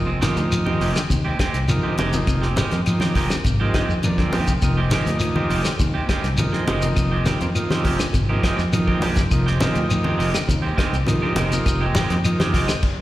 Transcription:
Already playing: F1 C3 D#4
0.06 G#3 C4
0.21 D#3 F3 G#3 A#3 D#4 G4, muted clean electric guitar stroke, snare, closed hi-hat, high conga, shekere
0.36 D2, closed hi-hat, shekere
0.52 F3, closed hi-hat, claves, shekere
0.66 D#3 G#3 C4 G4, high conga
0.81 F1 D#3 G#3 C4 G4, open hi-hat, shekere
0.96 D3, snare, closed hi-hat, claves, shekere
1.10 D#2 C3, kick, closed hi-hat, high conga, shekere
1.25 G#3 C4 G4
1.39 D3 G#3 C4 G4, kick, snare, closed hi-hat, claves
1.54 C2, closed hi-hat, shekere
1.68 D#3 F3 A#3 D#4, closed hi-hat, high conga, claves, shekere
1.83 D3 G#3 C4 G4, muted fingered electric bass stroke
1.98 F1 D#3 G#3 C4 G4, closed hi-hat, high conga, shekere
2.13 C3 F3 A#3 D#4, closed hi-hat, high conga, shekere
2.27 F1 C3, kick, closed hi-hat, high conga, claves, shekere
2.41 G#3 C4 G4, snare
2.56 D#3 G#3 G4, muted clean electric guitar stroke, snare, closed hi-hat, high conga, shekere
2.71 F2 F3 A#3 D#4, snare, closed hi-hat, shekere
2.86 F3 A#3 D#4, closed hi-hat, high conga, claves, shekere
3.00 D#3 G#3 C4 G4, snare, high conga
3.15 F1 D#3 G#3 C4 G4, kick, open hi-hat, shekere
3.30 D3, snare, closed hi-hat, claves, shekere
3.44 G#1 C3, kick, closed hi-hat, high conga, shekere
3.60 F3 G#3 A#3 C4 D#4 G4
3.74 D3 D#3 G#3 C4 G4, kick, snare, closed hi-hat, claves
3.89 F2, shekere
4.03 D#3 F3 A#3 D4, closed hi-hat, high conga, claves, shekere
4.18 D3 G#3 C4, muted clean electric guitar stroke, kick, snare
4.32 A#1 D#3 G#3 C4 G4, open hi-hat, high conga, shekere
4.47 C3, kick, closed hi-hat, shekere
4.62 F1 C3 F3 A#3 D#4, kick, closed hi-hat, high conga, claves, shekere
4.77 G#3 C4 G4
4.91 D#3 F3 G#3 A#3 C4 D#4 G4, snare, closed hi-hat, high conga, shekere
5.06 D2, snare, closed hi-hat, shekere
5.20 F3, closed hi-hat, high conga, claves, shekere
5.36 D#3 G#3 C4 G4, high conga
5.49 F1 D#3 G#3 C4 G4, open hi-hat, shekere
5.65 D3, snare, closed hi-hat, claves, shekere
5.79 D#2 C3, kick, closed hi-hat, high conga, shekere
5.94 G#3 C4 G4
6.09 D3 D#3 G#3 C4 G4, kick, snare, closed hi-hat, claves
6.24 C2, snare, closed hi-hat, shekere
6.37 D#3 F3 A#3 D#4, closed hi-hat, high conga, claves, shekere
6.52 D3 G#3 C4, muted clean electric guitar stroke, muted fingered electric bass stroke, snare
6.67 F1 D#3 G#3 C4 G4, closed hi-hat, high conga, shekere
6.82 C3 F3 A#3 D#4, closed hi-hat, high conga, shekere
6.96 F1 C3, kick, closed hi-hat, high conga, claves, shekere
7.11 G#3 C4 G4
7.25 D#3 C4 G4, muted clean electric guitar stroke, snare, closed hi-hat, high conga, shekere
7.41 F2 F3 A#3 C4, closed hi-hat, shekere
7.55 F3 A#3 D#4, closed hi-hat, high conga, claves, shekere
7.69 D#3 G#3 C4 G4, snare, high conga
7.84 F1 D#3 G#3 C4 G4, kick, open hi-hat, high conga, shekere
7.99 D3, snare, closed hi-hat, claves, shekere
8.13 G#1 C3, kick, closed hi-hat, high conga, shekere
8.29 F3 G#3 A#3 C4 D#4 G4
8.43 D#3 G#3 C4 G4, kick, snare, closed hi-hat, claves
8.58 F2, snare, shekere
8.73 D#3 F3 A#3 D#4, closed hi-hat, high conga, claves, shekere
8.87 D3 G#3 C4 G4, kick
9.02 A#1 D#3 G#3 C4 G4, open hi-hat, high conga, shekere
9.16 C3, kick, snare, closed hi-hat, high conga, shekere
9.31 F1 C3 F3 A#3 D#4, kick, closed hi-hat, high conga, claves, shekere
9.46 G#3 C4 G4, snare
9.60 D#3 F3 G#3 A#3 C4 D#4 G4, muted clean electric guitar stroke, snare, closed hi-hat, high conga, shekere
9.75 D2, closed hi-hat, shekere
9.90 F3, closed hi-hat, high conga, claves, shekere
10.04 D#3 G#3 C4 G4, high conga
10.18 F1 D#3 G#3 C4 G4, open hi-hat, shekere
10.34 D3, snare, closed hi-hat, claves, shekere
10.49 D#2 C3, kick, closed hi-hat, high conga, shekere
10.62 G#3 C4 G4
10.77 D3 D#3 G#3 C4 G4, kick, snare, closed hi-hat, claves
10.93 C2, closed hi-hat, shekere
11.07 D#3 F3 A#3 D#4, closed hi-hat, high conga, claves, shekere
11.22 D3 G#3 C4 G4, muted fingered electric bass stroke
11.36 F1 D#3 G#3 C4 G4, closed hi-hat, high conga, shekere
11.52 C3 F3 A#3 D#4, closed hi-hat, shekere
11.66 F1, muted clean electric guitar stroke, kick, closed hi-hat, high conga, claves, shekere
11.81 G#3 C4 G4
11.95 D#3 G#3 C4 G4, snare, closed hi-hat, high conga, shekere
12.10 F2 F3 A#3 D#4, snare, closed hi-hat, shekere
12.24 F3 A#3 D#4, closed hi-hat, high conga, claves, shekere
12.40 D#3 G#3 C4 G4, snare, high conga
12.53 F1 D#3 G#3 C4 G4, kick, snare, open hi-hat, shekere
12.68 D3, snare, closed hi-hat, claves, shekere
12.83 kick, crash

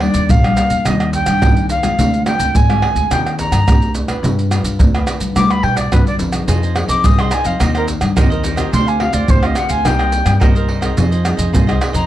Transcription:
Already playing: D#3
0.00 G3 A#3 D4 D5, pandeiro, tamborim
0.14 D#2, pandeiro, maracas, surdo
0.29 A#1 A#2 F5, pandeiro, maracas, surdo
0.44 G3 A#3 D4, pandeiro, tamborim, maracas
0.57 pandeiro, tamborim, maracas
0.70 D#2, pandeiro, maracas, surdo
0.85 D#2 D#3 G3 A#3 D4 D#5, pandeiro, tamborim, maracas, surdo
1.00 pandeiro, tamborim, maracas
1.13 G5, pandeiro, maracas, surdo
1.26 G2, pandeiro, tamborim, maracas, surdo
1.42 D#2 D#3 G3 A#3 D4, pandeiro, tamborim, maracas, surdo
1.57 pandeiro, maracas
1.69 F5, pandeiro, maracas
1.83 G#3 C4 F4, pandeiro, tamborim, maracas, surdo
1.98 D2 D3, pandeiro, maracas, surdo
2.14 pandeiro, maracas
2.25 G#3 C4 F4 G5, pandeiro, tamborim, maracas
2.39 D2, pandeiro, maracas, surdo
2.54 G#2 D3 G#5, pandeiro, maracas, surdo
2.69 G#3 C4 F4, pandeiro, tamborim, maracas
2.82 pandeiro, tamborim
2.95 D2, pandeiro, maracas, surdo
3.10 D#2 D#3 C4 G4 A#4 G5, pandeiro, tamborim, maracas, surdo
3.26 pandeiro, tamborim, maracas
3.39 A#5, pandeiro, maracas, surdo
3.52 G2, pandeiro, tamborim, maracas, surdo
3.67 D2 C4 G4 A#4, pandeiro, tamborim, maracas, surdo
3.82 pandeiro, maracas
3.95 pandeiro, maracas
4.07 D4 F4 B4, pandeiro, tamborim, maracas, surdo
4.23 G2 G3, pandeiro, maracas, surdo
4.39 pandeiro, maracas
4.50 D4 F4 B4, pandeiro, tamborim, maracas
4.63 G2, pandeiro, maracas, surdo
4.79 D2 D3, pandeiro, maracas, surdo
4.94 D4 F4 B4, pandeiro, tamborim, maracas
5.07 pandeiro, tamborim, maracas
5.20 G2, pandeiro, maracas, surdo
5.35 D2 G3 D4 F4 B4 D6, pandeiro, tamborim, maracas, surdo
5.50 B5, pandeiro, tamborim, maracas
5.63 B2 G5, pandeiro
5.76 D5, pandeiro, tamborim, maracas, surdo
5.92 G2 D3 D4 F4 B4, pandeiro, tamborim, maracas, surdo
6.07 D5, pandeiro, maracas
6.19 F2 D4 F4 B4, pandeiro, maracas
6.32 D#4 G#4 C5, pandeiro, tamborim, maracas, surdo
6.47 F2 F3 F4 G#4 C5 D#5, pandeiro, maracas, surdo
6.62 G#4 C5 D#5, pandeiro, maracas
6.75 D#4 G#4 C5, muted cavaquinho stroke, pandeiro, tamborim, maracas
6.88 F2 G#4 C5 D#5 D6, pandeiro, maracas, surdo
7.04 C2 C3 F4 G#4 C5 D#5 D#6, pandeiro, maracas, surdo
7.18 D#4 G#4 C5 D#5 C6, pandeiro, tamborim, maracas
7.31 G#5, pandeiro, tamborim, maracas
7.44 F2 G#4 C5 D#5 F5, pandeiro, maracas, surdo
7.59 D#2 D#3 A#3 C4 D#4 G4 A#4 C5 D#5, pandeiro, tamborim, maracas, surdo
7.74 A#4 C5 D#5, pandeiro, tamborim, maracas
7.87 muted cavaquinho stroke, pandeiro, maracas, surdo
8.01 G2, pandeiro, tamborim, maracas, surdo
8.16 D#2 D#3 A#3 C4 D#4 G4 A#4 C5 D#5, pandeiro, tamborim, maracas, surdo
8.30 A#4 C5 D#5, pandeiro, maracas
8.43 A#3 C4 D#4 G4 A#4 C5 D#5, pandeiro, maracas
8.56 C4 F4 G4 A#4 C5 D#5, pandeiro, tamborim, maracas, surdo
8.72 D2 D3 D4 G4 C5 F5 C6, pandeiro, maracas, surdo
8.86 G4 C5 F5 G#5, pandeiro, maracas
9.00 C4 F4 G4 F5, muted cavaquinho stroke, pandeiro, tamborim
9.12 D2 G4 C5 D5 F5, pandeiro, maracas, surdo
9.28 D2 D3 D4 G4 C5 F5, pandeiro, maracas, surdo
9.42 C4 F4 G4 C5 D#5 F5, pandeiro, tamborim, maracas
9.55 F#5, pandeiro, tamborim, maracas
9.69 D2 G4 C5 F5 G#5, pandeiro, maracas, surdo
9.84 C2 C3 A#3 D#4 G4 A#4 C5 D#5 G5, pandeiro, tamborim, maracas, surdo
9.99 A#4 C5 D#5, pandeiro, tamborim, maracas
10.12 muted cavaquinho stroke, pandeiro, maracas
10.26 G2, pandeiro, tamborim, maracas, surdo
10.40 G2 A#3 D#4 G4 A#4 C5 D#5, pandeiro, tamborim, maracas, surdo
10.55 A#4 C5 D#5, pandeiro, maracas
10.68 D#4 A#4 C5 D#5, pandeiro
10.81 C4 D#4 G#4 A#4 C5 D#5, pandeiro, tamborim, maracas, surdo
10.97 F2 F3 F4 G#4 C5 D#5, pandeiro, maracas, surdo
11.11 G#4 C5 D#5, pandeiro, maracas
11.24 C4 D#4 G#4, muted cavaquinho stroke, pandeiro, tamborim, maracas
11.37 F2 G#4 C5 D#5, pandeiro, maracas, surdo
11.53 C2 C3 F4 G#4 C5 D#5, pandeiro, maracas, surdo
11.67 C4 D#4 G#4 C5 D#5, pandeiro, tamborim, maracas
11.81 pandeiro, tamborim, maracas
11.93 F2 G#4 C5 D#5 A#5, pandeiro, maracas, surdo

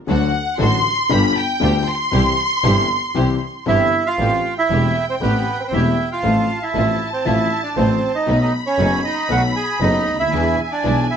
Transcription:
0.07 D2 D3 F#3 A3 D4 F#4 A4 F#5
0.58 A1 A2 D3 F#3 A3 D4 F#4 A4 C6
1.09 G1 G2 D3 G3 B3 F4 G4 B5
1.37 G5
1.60 D2 D3 G3 B3 F4 G4
1.88 C6
2.11 C2 C3 E3 G3 C4 E4 G4
2.63 G1 G2 E3 G3 C4 E4 G4
3.14 C2 C3 E3 G3 C4 E4 G4
3.66 G1 G2 E3 G3 C4 E4 G4 E5
4.06 F4 F5
4.18 A1 A2 E3 A3 C4 G4 G5
4.58 E4 E5
4.69 E1 E2 E3 A3 C4 G4
5.10 C4 C5
5.21 A1 A2 E3 A3 B3 C4 G4 B4
5.64 B4 C5
5.68 E1 E2 E3 A3 C4
5.72 E1 A3 C4 E4 G4 E5
6.12 F4 F5
6.23 A1 A2 F3 A3 C4 F4 A4 A5
6.62 E4 E5
6.74 A1 A2 F3 A3 C4 F4 A4
7.13 C4 C5
7.25 A1 A2 F3 A3 C4 E4 F4 A4 E5
7.63 D4 D5
7.76 A1 A2 F3 A3 C4 F4 A4 C5
8.15 D#4 D#5
8.26 B1 B2 F#3 A3 B3 D#4 A4 B5
8.41 D#4 D#5
8.66 C#4 C#5
8.77 F#1 F#2 F#3 A3 B3 D#4 A4
9.05 D#4 D#5
9.29 B1 B2 F#3 A3 B3 D#4 F#4 A4 F#5
9.56 G#4 G#5
9.80 F#1 F#2 F#3 A3 B3 D#4 A4 D#5
10.06 D2
10.14 C#2
10.20 D2 E4 E5
10.26 D#2
10.32 E2 E3 G#3 B3 D4 E4 G#4 G#5
10.64 E5
10.71 D4 D5
10.84 B1 B2 E3 G#3 B3 D4 E4 G#4
11.11 E4 E5

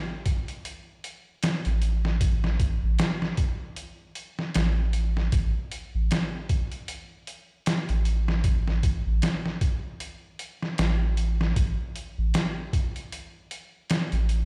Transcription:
0.26 kick, closed hi-hat
0.48 closed hi-hat
0.65 closed hi-hat
1.04 closed hi-hat
1.43 snare, closed hi-hat
1.65 A1, closed hi-hat
1.82 closed hi-hat
2.05 snare
2.21 kick, closed hi-hat
2.44 snare
2.60 kick, closed hi-hat
2.83 A1
2.99 snare, closed hi-hat
3.22 snare
3.37 kick, closed hi-hat
3.76 closed hi-hat
4.15 closed hi-hat
4.39 snare
4.54 A1, snare, closed hi-hat
4.93 closed hi-hat
5.17 snare
5.32 A1, kick, closed hi-hat
5.72 closed hi-hat
5.95 A1
6.11 snare, closed hi-hat
6.49 kick, closed hi-hat
6.72 closed hi-hat
6.88 closed hi-hat
7.27 closed hi-hat
7.66 snare, closed hi-hat
7.89 A1, closed hi-hat
8.05 closed hi-hat
8.28 snare
8.44 kick, closed hi-hat
8.68 snare
8.83 kick, closed hi-hat
9.06 A1
9.22 snare, closed hi-hat
9.46 snare
9.61 kick, closed hi-hat
10.00 closed hi-hat
10.39 closed hi-hat
10.62 snare
10.78 A1, snare, closed hi-hat
11.17 closed hi-hat
11.41 snare
11.56 A1, kick, closed hi-hat
11.96 closed hi-hat
12.18 A1
12.34 snare, closed hi-hat
12.73 kick, closed hi-hat
12.96 closed hi-hat
13.12 closed hi-hat
13.51 closed hi-hat
13.90 snare, closed hi-hat
14.12 A1, closed hi-hat
14.29 closed hi-hat

